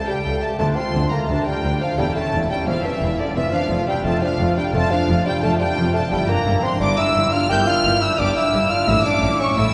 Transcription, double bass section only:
0.25 C#2
0.59 D2
0.94 D2
1.29 D2
1.64 D2
1.98 E1
2.33 E1
2.67 E1
3.02 E1
3.36 F1
3.70 F1
4.05 F1
4.39 F1
4.74 F1
5.08 F1
5.43 F1
5.77 F1
6.12 G1
6.46 G1
6.81 G1
7.16 G1
7.50 G1
7.84 G1
8.19 G1
8.54 G1
8.88 A1
9.23 A1
9.58 A1

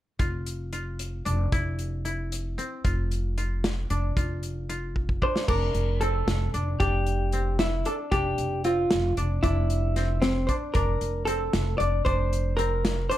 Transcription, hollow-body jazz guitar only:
5.23 C5
5.48 A#4
6.01 A4
6.80 G4
7.60 E4
7.86 A4
8.11 G4
8.65 F4
9.43 E4
10.22 C4
10.47 C5
10.74 A#4
11.25 A4
11.78 D5
12.05 C5
12.57 A#4
13.10 C5

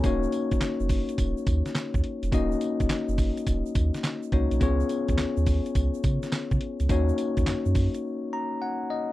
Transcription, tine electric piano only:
0.04 A#3 C#4 D#4 F#4 C#5
2.32 A#3 C#4 D#4 F#4 D#5
4.33 A#3 C#4 D#4 F#4 C#5
4.60 B3 C#4 F4 G#4 C#5
6.89 A#3 C#4 D#4 F#4 C#5
8.33 A#5
8.62 F#5
8.90 D#5

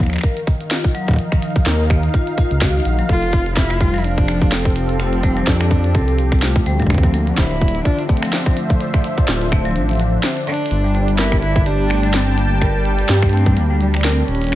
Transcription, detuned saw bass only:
Already playing: D#2
1.66 D#2
2.51 C#2
2.85 A#1
3.09 F1
5.47 F2
5.95 C2
6.66 D2
7.38 D1
9.28 D1
9.76 A1
10.71 G1
13.09 G2
13.57 D2
14.28 D#1

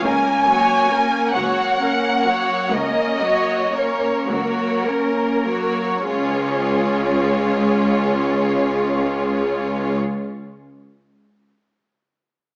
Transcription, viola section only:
0.03 A#3 C#4
0.46 F#3 A#3
0.89 A#3 C#4
1.34 F#3 A#3
1.79 A#3 C#4
2.25 F#3 A#3
2.72 A#3 C#4
3.21 F#3 A#3
3.73 A#3 C#4
4.28 F#3 A#3
4.86 A#3 C#4
5.46 F#3 A#3
6.06 G#3 C#4

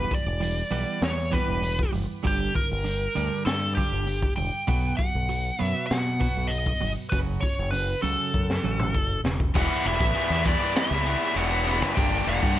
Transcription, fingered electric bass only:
0.26 E1
0.71 B1
1.02 E2
1.48 E1
1.94 F#1
2.25 G1
2.71 G1
3.17 D2
3.46 G2
3.93 G1
4.38 E1
4.68 B1
5.15 B1
5.61 F#2
5.91 B2
6.37 B1
6.83 G1
7.13 F#1
7.59 F#1
8.03 C#2
8.34 F#2
8.64 A1
8.95 F#1
9.24 E1
9.55 E1
9.85 E1
10.00 A1
10.30 E2
10.91 C#2
11.36 E1
11.82 F#1
11.97 G1
12.27 E1
12.43 G2

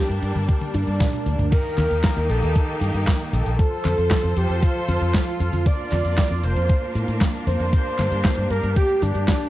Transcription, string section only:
Already playing: G3 A#3 D4
1.53 D#3 A#3 D#4 G4
3.59 F3 F4 A4 C5
5.66 A#3 D4
7.73 G4

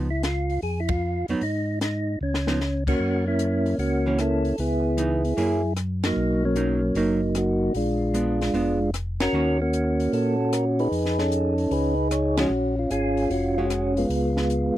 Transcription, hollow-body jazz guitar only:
1.29 F#3 B3 D#4
2.48 F3 B3 D#4
4.06 E3 A#3 C#4
4.97 E3 B3 D#4
5.37 F#3 A#3 E4 G#4
6.56 F#3 A#3 D#4
6.96 F#3 A#3 D#4
8.14 G#3 B3 D4
8.54 G#3 B3 D4
9.34 D#3 A#3 C#4 F#4
12.38 F3 G#3 C#4
13.58 G#3 C#4

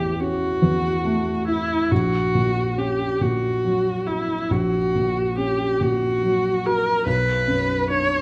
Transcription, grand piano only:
Already playing: A1 E2
0.20 C#4
0.62 E2
1.05 A3
1.48 E4
1.91 A#1
2.35 A#2
2.78 C#4
3.21 A#2
3.65 F#3
4.08 F#4
4.50 A#1
4.95 A#2
5.38 C#4
5.81 A#2
6.23 F#3
6.65 F#4
7.06 B1
7.48 F#2
7.90 D4

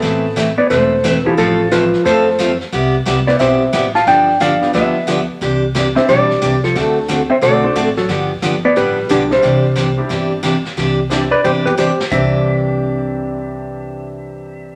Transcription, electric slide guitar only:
0.58 B4 D5
0.70 A4 C5
1.12 B4
1.26 E4 G4
1.38 F4 A4
1.72 F4 B4
2.06 A4 C5
3.27 B4 D5
3.40 C5 E5
3.95 F5 A5
4.08 D5 G5
4.41 D5 F5
4.75 B4 E5
5.96 C5 E5
6.09 G4 D5
6.64 F4 A4
7.30 C5 E5
7.43 A4 D5
7.98 F#4 A4
8.65 B4 D5
8.77 G4 B4
9.11 D4 G4
9.32 G4 C5
11.31 B4 D5
11.45 G4 C5
11.66 G4 B4
11.78 G4 C5
12.12 E5

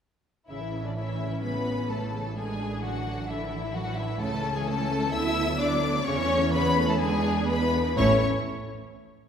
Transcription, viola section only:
0.49 C#3 C#4
0.62 E3
0.73 C#3
0.85 E3
0.97 C#3
1.09 E3
1.20 C#3
1.32 E3
1.44 C#3
1.55 E3
1.67 C#3
1.79 E3
1.90 C#3
2.03 E3
2.14 C#3
2.26 E3
2.37 D3 D4
2.48 E3
2.60 D3
2.71 E3
2.83 D3
2.95 E3
3.06 D3
3.18 E3
3.30 D3
3.41 E3
3.53 D3
3.64 E3
3.75 D3
3.86 E3
3.98 D3
4.09 E3
4.21 C#3 C#4
4.32 E3
4.44 C#3
4.55 E3
4.68 C#3
4.79 E3
4.90 C#3
5.02 E3
5.13 D3 B3
5.24 F#3
5.35 D3
5.46 F#3
5.58 D3
5.70 F#3
5.82 D3
5.94 F#3
6.06 C#3 C#4
6.17 E3
6.29 A3
6.41 E3
6.53 C#3
6.65 E3
6.77 A3
6.88 E3
7.00 D3 D4
7.11 E3
7.24 G#3
7.35 B3
7.48 G#3
7.61 E3
7.74 D3
7.86 E3
7.98 A3 E4

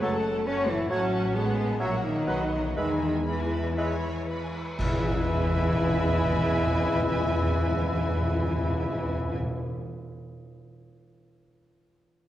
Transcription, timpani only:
4.79 E2
4.86 E2
4.92 E2
4.98 E2
5.05 E2
5.12 E2
5.18 E2
5.26 E2
5.32 E2
5.39 E2
5.46 E2
5.53 E2
5.60 E2
5.67 E2
5.74 E2
5.82 E2
5.89 E2
5.96 E2
6.03 E2
6.09 E2
6.16 E2
6.23 E2
6.30 E2
6.38 E2
6.44 E2
6.52 E2
6.59 E2
6.66 E2
6.74 E2
6.81 E2
6.88 E2
6.95 E2
7.02 E2
7.09 E2
7.16 E2
7.23 E2
7.29 E2
7.36 E2
7.43 E2
7.51 E2
7.58 E2
7.65 E2
7.72 E2
7.79 E2
7.86 E2
7.93 E2
8.00 E2
8.07 E2
8.14 E2
8.22 E2
8.29 E2
8.36 E2
8.43 E2
8.50 E2
8.56 E2
8.64 E2
8.71 E2
8.77 E2
8.84 E2
8.91 E2
8.98 E2
9.05 E2
9.12 E2
9.19 E2
9.26 E2
9.32 E2
9.39 E2
9.46 E2

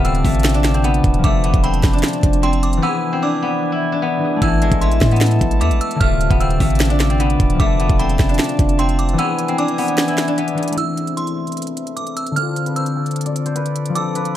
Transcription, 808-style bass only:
Already playing: D1
0.25 A1
1.04 D1
1.24 F1
1.54 E1
1.84 F1
2.23 F1
4.42 A1
4.62 G#1
4.72 A1
5.01 A2
5.41 A1
5.61 E2
5.71 A1
6.01 D1
6.31 D1
6.60 A1
7.40 D1
7.60 F1
7.90 E1
8.19 F1
8.59 F1

